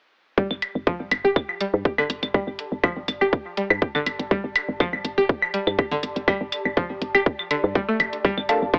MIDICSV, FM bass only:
0, 0, Header, 1, 2, 480
1, 0, Start_track
1, 0, Tempo, 491803
1, 368, Time_signature, 4, 2, 24, 8
1, 8576, End_track
2, 0, Start_track
2, 0, Title_t, "FM bass"
2, 0, Program_c, 0, 39
2, 496, Note_on_c, 0, 31, 98
2, 588, Note_off_c, 0, 31, 0
2, 734, Note_on_c, 0, 31, 94
2, 827, Note_off_c, 0, 31, 0
2, 975, Note_on_c, 0, 31, 79
2, 1068, Note_off_c, 0, 31, 0
2, 1087, Note_on_c, 0, 31, 91
2, 1192, Note_off_c, 0, 31, 0
2, 1214, Note_on_c, 0, 31, 74
2, 1307, Note_off_c, 0, 31, 0
2, 1694, Note_on_c, 0, 43, 99
2, 1787, Note_off_c, 0, 43, 0
2, 1934, Note_on_c, 0, 31, 79
2, 2027, Note_off_c, 0, 31, 0
2, 2047, Note_on_c, 0, 31, 79
2, 2152, Note_off_c, 0, 31, 0
2, 2174, Note_on_c, 0, 31, 82
2, 2267, Note_off_c, 0, 31, 0
2, 2414, Note_on_c, 0, 31, 94
2, 2507, Note_off_c, 0, 31, 0
2, 2654, Note_on_c, 0, 31, 94
2, 2747, Note_off_c, 0, 31, 0
2, 2895, Note_on_c, 0, 31, 79
2, 2988, Note_off_c, 0, 31, 0
2, 3008, Note_on_c, 0, 31, 90
2, 3112, Note_off_c, 0, 31, 0
2, 3135, Note_on_c, 0, 31, 81
2, 3228, Note_off_c, 0, 31, 0
2, 3615, Note_on_c, 0, 43, 94
2, 3708, Note_off_c, 0, 43, 0
2, 3855, Note_on_c, 0, 31, 81
2, 3947, Note_off_c, 0, 31, 0
2, 3967, Note_on_c, 0, 31, 77
2, 4072, Note_off_c, 0, 31, 0
2, 4094, Note_on_c, 0, 31, 83
2, 4187, Note_off_c, 0, 31, 0
2, 4334, Note_on_c, 0, 31, 99
2, 4427, Note_off_c, 0, 31, 0
2, 4574, Note_on_c, 0, 31, 97
2, 4667, Note_off_c, 0, 31, 0
2, 4813, Note_on_c, 0, 31, 80
2, 4907, Note_off_c, 0, 31, 0
2, 4927, Note_on_c, 0, 31, 90
2, 5032, Note_off_c, 0, 31, 0
2, 5055, Note_on_c, 0, 31, 78
2, 5148, Note_off_c, 0, 31, 0
2, 5535, Note_on_c, 0, 43, 91
2, 5628, Note_off_c, 0, 43, 0
2, 5775, Note_on_c, 0, 31, 84
2, 5868, Note_off_c, 0, 31, 0
2, 5888, Note_on_c, 0, 31, 75
2, 5993, Note_off_c, 0, 31, 0
2, 6015, Note_on_c, 0, 31, 83
2, 6108, Note_off_c, 0, 31, 0
2, 6256, Note_on_c, 0, 31, 97
2, 6348, Note_off_c, 0, 31, 0
2, 6495, Note_on_c, 0, 31, 97
2, 6588, Note_off_c, 0, 31, 0
2, 6735, Note_on_c, 0, 31, 75
2, 6828, Note_off_c, 0, 31, 0
2, 6848, Note_on_c, 0, 31, 93
2, 6952, Note_off_c, 0, 31, 0
2, 6975, Note_on_c, 0, 31, 75
2, 7068, Note_off_c, 0, 31, 0
2, 7454, Note_on_c, 0, 43, 97
2, 7547, Note_off_c, 0, 43, 0
2, 7806, Note_on_c, 0, 29, 89
2, 7912, Note_off_c, 0, 29, 0
2, 8174, Note_on_c, 0, 31, 98
2, 8267, Note_off_c, 0, 31, 0
2, 8414, Note_on_c, 0, 31, 97
2, 8507, Note_off_c, 0, 31, 0
2, 8576, End_track
0, 0, End_of_file